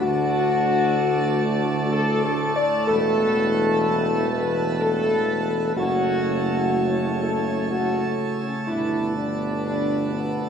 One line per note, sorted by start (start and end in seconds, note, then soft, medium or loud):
0.00 2.71 D2 loud
0.00 5.59 A2 loud
0.00 2.89 D3 medium
0.00 5.59 A3 loud
0.00 5.72 A3 medium
0.00 2.88 D4 medium
0.00 1.88 F#4 loud
0.00 5.72 A4 medium
0.00 2.72 D5 medium
0.00 5.73 A5 medium
1.92 2.22 A4 loud
2.24 2.54 A4 loud
2.56 2.86 D5 loud
2.86 5.72 E1 loud
2.86 5.76 E3 medium
2.86 5.75 B3 medium
2.86 4.27 A4 loud
2.86 5.73 B4 medium
4.31 4.66 B4 loud
4.80 5.72 A4 loud
5.76 8.35 F#1 medium
5.76 8.63 A2 medium
5.76 8.67 C#3 medium
5.76 10.49 A3 medium
5.76 8.68 C#4 medium
5.76 7.18 F#4 loud
5.76 10.49 A4 medium
5.76 8.67 C#5 medium
5.76 10.49 A5 medium
7.22 7.67 A4 loud
7.70 8.39 F#4 loud
8.43 8.54 C#4 medium
8.67 10.49 G1 medium
8.67 10.49 B2 medium
8.67 10.49 D3 medium
8.67 10.49 D4 medium
8.67 9.13 E4 loud
8.67 10.49 B4 medium
9.17 9.64 D4 medium
9.65 10.11 D4 loud
10.14 10.49 B3 medium